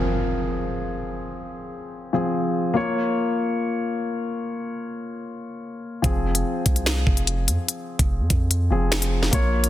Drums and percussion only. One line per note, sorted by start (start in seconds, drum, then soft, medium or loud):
6.04 kick loud
6.04 closed hi-hat medium
6.35 closed hi-hat medium
6.66 kick loud
6.66 closed hi-hat medium
6.76 closed hi-hat medium
6.86 finger snap loud
6.86 snare loud
7.07 kick loud
7.17 closed hi-hat soft
7.27 closed hi-hat medium
7.48 closed hi-hat medium
7.68 closed hi-hat medium
7.99 kick loud
7.99 closed hi-hat medium
8.30 kick loud
8.30 closed hi-hat medium
8.51 closed hi-hat medium
8.92 finger snap loud
8.92 snare loud
8.92 closed hi-hat medium
9.02 closed hi-hat medium
9.23 snare medium
9.33 kick loud
9.33 closed hi-hat medium
9.64 closed hi-hat medium